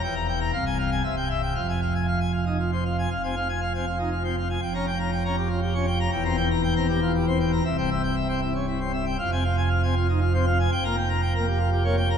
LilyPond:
<<
  \new Staff \with { instrumentName = "Pipe organ" } { \time 3/4 \key f \minor \tempo 4 = 118 << { g''16 bes''16 g''16 bes''16 f''16 aes''16 f''16 aes''16 e''16 g''16 e''16 g''16 | f''16 aes''16 f''16 aes''16 f''16 aes''16 f'16 ees'16 f'16 c''16 f''16 aes''16 | f''16 aes''16 f''16 aes''16 f''16 aes''16 f'16 ees'16 f'16 c''16 f''16 aes''16 | g''16 bes''16 g''16 bes''16 g''16 bes''16 g'16 f'16 g'16 des''16 g''16 bes''16 |
g''16 bes''16 g''16 bes''16 g''16 bes''16 g'16 f'16 g'16 c''16 g''16 bes''16 | e''16 g''16 e''16 g''16 e''16 g''16 e'16 des'16 e'16 c''16 e''16 g''16 | f''16 aes''16 f''16 aes''16 f''16 aes''16 f'16 ees'16 f'16 c''16 f''16 aes''16 | g''16 bes''16 g''16 bes''16 g''16 bes''16 g'16 f'16 g'16 des''16 g''16 bes''16 | } \\ { e,4 c,4 c,4 | f,2. | f,16 c'16 r8. c'16 r8. c'16 r8 | f,16 des'16 r8. des'16 r8. des'16 r8 |
e,16 c'16 r8. c'16 r8. c'16 r8 | c,16 c'16 r8. c'16 r8. c'16 r8 | f,16 c'16 r8. c'16 r8. c'16 r8 | f,16 bes16 r8. bes16 r8. bes16 r8 | } >> }
  \new Staff \with { instrumentName = "Pipe organ" } { \clef bass \time 3/4 \key f \minor e,,4 c,,4 c,,4 | f,,2. | f,,2. | f,,2. |
e,,2. | c,,2. | f,,2. | f,,2. | }
>>